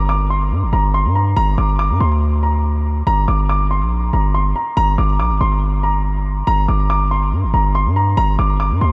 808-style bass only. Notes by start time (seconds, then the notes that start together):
Already playing: G1
0.52 G2
0.63 G1
0.73 G1
1.05 G2
1.37 G1
1.58 G1
1.90 G2
2.00 D2
3.07 G1
3.28 G1
3.82 A#1
4.13 G1
4.77 G1
4.98 G1
5.20 A#1
5.31 G1
5.41 G1
6.47 G1
6.69 G1
7.32 G2
7.44 G1
7.54 G1
7.86 G2
8.17 G1
8.39 G1
8.71 G2
8.81 D2